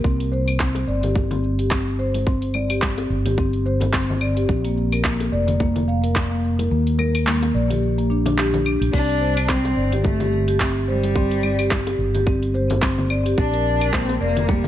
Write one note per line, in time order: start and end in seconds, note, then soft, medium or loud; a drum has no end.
0.04 0.19 C4 medium
0.04 kick loud
0.04 shaker soft
0.20 open hi-hat soft
0.20 shaker soft
0.32 0.47 C5 medium
0.32 shaker medium
0.48 open hi-hat soft
0.48 claves medium
0.48 shaker soft
0.60 0.75 C4 medium
0.60 kick loud
0.60 clap medium
0.60 high conga medium
0.60 shaker soft
0.75 open hi-hat soft
0.75 high bongo medium
0.75 shaker soft
0.87 3.06 G1 medium
0.87 1.02 D5 medium
0.87 shaker medium
1.03 1.15 G4 medium
1.03 open hi-hat soft
1.03 low conga medium
1.03 shaker soft
1.15 kick loud
1.15 high bongo medium
1.15 high conga medium
1.15 shaker soft
1.31 1.43 C4 medium
1.31 open hi-hat soft
1.31 low conga medium
1.31 shaker soft
1.43 shaker medium
1.59 1.71 G4 medium
1.59 open hi-hat soft
1.59 shaker soft
1.71 1.86 C4 medium
1.71 kick loud
1.71 clap medium
1.71 shaker soft
1.87 shaker soft
1.99 2.14 C5 medium
1.99 shaker medium
2.14 open hi-hat soft
2.14 high bongo soft
2.14 high conga medium
2.14 shaker soft
2.27 2.42 C4 loud
2.27 kick loud
2.27 shaker soft
2.42 open hi-hat soft
2.42 shaker soft
2.54 2.69 D5 medium
2.54 high conga medium
2.54 claves medium
2.54 shaker medium
2.70 2.82 G4 medium
2.70 open hi-hat medium
2.70 claves medium
2.70 shaker soft
2.82 kick loud
2.82 clap medium
2.82 high conga medium
2.82 shaker soft
2.98 3.09 C4 medium
2.98 open hi-hat soft
2.98 high bongo medium
2.98 shaker soft
3.10 4.45 G1 medium
3.10 shaker medium
3.26 3.37 G4 medium
3.26 open hi-hat medium
3.26 low conga medium
3.26 shaker soft
3.38 3.53 C4 medium
3.38 kick loud
3.38 shaker soft
3.53 open hi-hat soft
3.53 shaker soft
3.66 3.81 C5 medium
3.66 high conga soft
3.66 shaker medium
3.81 open hi-hat medium
3.81 high bongo medium
3.81 low conga medium
3.81 shaker soft
3.93 4.08 C4 loud
3.93 kick medium
3.93 clap loud
3.93 high conga medium
3.93 shaker soft
4.10 low conga medium
4.10 shaker soft
4.21 4.35 D5 medium
4.21 claves medium
4.21 shaker medium
4.37 4.48 G4 medium
4.37 open hi-hat soft
4.37 shaker soft
4.49 5.28 A#1 medium
4.49 kick loud
4.49 shaker soft
4.64 4.76 A#3 medium
4.64 open hi-hat soft
4.64 shaker soft
4.77 shaker medium
4.92 5.04 A#4 medium
4.92 open hi-hat medium
4.92 claves medium
4.92 shaker soft
5.04 5.20 A#3 medium
5.04 kick medium
5.04 clap loud
5.04 high conga medium
5.04 shaker soft
5.20 open hi-hat soft
5.20 high bongo medium
5.20 shaker soft
5.32 6.67 F1 medium
5.32 5.47 D5 medium
5.32 shaker medium
5.47 open hi-hat medium
5.47 low conga medium
5.47 shaker soft
5.60 5.75 A#3 loud
5.60 kick loud
5.60 high bongo medium
5.60 high conga medium
5.60 shaker soft
5.76 open hi-hat soft
5.76 low conga medium
5.76 shaker soft
5.88 6.02 F5 medium
5.88 shaker medium
6.04 6.15 A#4 medium
6.04 open hi-hat medium
6.04 shaker soft
6.16 kick medium
6.16 clap medium
6.16 shaker soft
6.31 6.43 A#3 medium
6.31 shaker soft
6.44 shaker medium
6.59 6.71 A#4 medium
6.59 open hi-hat medium
6.59 high bongo soft
6.59 high conga medium
6.59 shaker soft
6.71 7.50 D#2 medium
6.71 6.86 A#3 medium
6.71 shaker soft
6.87 open hi-hat soft
6.87 shaker soft
6.99 7.14 A#4 medium
6.99 high conga medium
6.99 claves medium
6.99 shaker medium
7.15 open hi-hat medium
7.15 claves medium
7.15 shaker soft
7.26 7.42 A#3 medium
7.26 clap loud
7.26 high conga medium
7.26 shaker soft
7.43 open hi-hat soft
7.43 high bongo medium
7.43 shaker soft
7.54 8.81 A#1 medium
7.54 7.69 D5 medium
7.54 shaker medium
7.70 7.82 G4 medium
7.70 open hi-hat medium
7.70 low conga medium
7.70 shaker soft
7.83 shaker soft
7.98 8.09 A#3 medium
7.98 open hi-hat soft
7.98 shaker soft
8.10 8.24 D4 medium
8.10 high conga soft
8.10 shaker medium
8.26 8.37 D4 medium
8.26 open hi-hat medium
8.26 high bongo medium
8.26 low conga medium
8.26 shaker soft
8.38 8.47 G4 medium
8.38 clap loud
8.38 high conga medium
8.38 shaker soft
8.53 open hi-hat soft
8.53 low conga medium
8.53 shaker soft
8.65 8.80 D4 medium
8.65 claves medium
8.65 shaker medium
8.81 8.91 A#1 medium
8.81 open hi-hat medium
8.81 shaker soft
8.93 9.73 C2 medium
8.93 9.08 C4 medium
8.93 9.51 D4 loud
8.93 kick medium
8.93 crash medium
8.93 shaker soft
9.09 open hi-hat soft
9.09 shaker soft
9.21 9.36 C5 medium
9.21 shaker medium
9.37 open hi-hat medium
9.37 claves medium
9.37 shaker soft
9.49 9.64 C4 medium
9.49 10.04 C4 medium
9.49 kick loud
9.49 clap loud
9.49 high conga medium
9.49 shaker soft
9.65 open hi-hat soft
9.65 high bongo medium
9.65 shaker soft
9.77 11.95 G1 medium
9.77 9.91 D5 medium
9.77 shaker medium
9.92 10.04 G4 medium
9.92 open hi-hat medium
9.92 low conga medium
9.92 shaker soft
10.04 10.56 A3 medium
10.04 kick loud
10.04 high bongo medium
10.04 high conga medium
10.04 shaker soft
10.20 10.32 G4 medium
10.20 open hi-hat soft
10.20 low conga medium
10.20 shaker soft
10.33 shaker medium
10.48 10.59 G4 medium
10.48 open hi-hat medium
10.48 shaker soft
10.60 10.75 C4 medium
10.60 kick loud
10.60 clap loud
10.60 shaker soft
10.76 shaker soft
10.88 11.95 G3 loud
10.88 11.03 C5 medium
10.88 shaker medium
11.04 open hi-hat medium
11.04 high bongo soft
11.04 high conga medium
11.04 shaker soft
11.16 11.31 C4 loud
11.16 kick loud
11.16 shaker soft
11.31 open hi-hat soft
11.31 shaker soft
11.43 11.58 D5 medium
11.43 high conga medium
11.43 claves medium
11.43 shaker medium
11.59 11.71 G4 medium
11.59 open hi-hat medium
11.59 claves medium
11.59 shaker soft
11.71 kick loud
11.71 clap loud
11.71 high conga medium
11.71 shaker soft
11.87 11.98 G4 medium
11.87 open hi-hat soft
11.87 high bongo medium
11.87 shaker soft
11.99 13.33 G1 medium
11.99 shaker medium
12.14 12.26 G4 medium
12.14 open hi-hat medium
12.14 low conga medium
12.14 shaker soft
12.27 12.42 C4 medium
12.27 kick loud
12.27 shaker soft
12.43 open hi-hat soft
12.43 shaker soft
12.54 12.69 C5 loud
12.54 high conga soft
12.54 shaker medium
12.70 open hi-hat medium
12.70 high bongo medium
12.70 low conga loud
12.70 shaker soft
12.82 12.97 C4 loud
12.82 kick loud
12.82 clap loud
12.82 high conga medium
12.82 shaker soft
12.98 low conga medium
12.98 shaker soft
13.10 13.24 D5 medium
13.10 claves medium
13.10 shaker medium
13.26 13.37 G4 medium
13.26 open hi-hat medium
13.26 shaker soft
13.38 14.17 A#1 medium
13.38 13.95 D4 loud
13.38 kick loud
13.38 shaker soft
13.53 13.65 A#4 medium
13.53 open hi-hat soft
13.53 shaker soft
13.66 shaker medium
13.81 13.93 A#4 medium
13.81 open hi-hat soft
13.81 claves medium
13.81 shaker soft
13.93 14.08 A#3 medium
13.93 14.21 C4 loud
13.93 kick loud
13.93 clap loud
13.93 high conga medium
13.93 shaker soft
14.09 open hi-hat soft
14.09 high bongo medium
14.09 shaker soft
14.21 14.68 F1 medium
14.21 14.51 A#3 loud
14.21 14.36 D5 loud
14.21 shaker medium
14.37 open hi-hat medium
14.37 low conga medium
14.37 shaker soft
14.48 14.68 G3 medium
14.48 14.64 A#3 medium
14.48 kick loud
14.48 high bongo medium
14.48 high conga medium
14.48 shaker soft
14.64 low conga loud